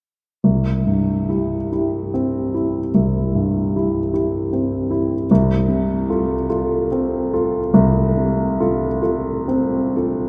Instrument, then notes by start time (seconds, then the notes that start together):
grand piano
0.44 C2
0.87 G2
1.28 E4 G4
1.72 E4 G4
2.14 C4
2.54 E4 G4
2.94 C2
3.35 G2
3.76 E4 G4
4.13 E4 G4
4.53 C4
4.90 E4 G4
5.31 C2
5.68 C3
6.10 F4 A4
6.50 F4 A4
6.92 C4
7.33 F4 A4
7.74 C2
8.17 C3
8.60 F4 A4
9.02 F4 A4
9.48 C4
9.96 F4 A4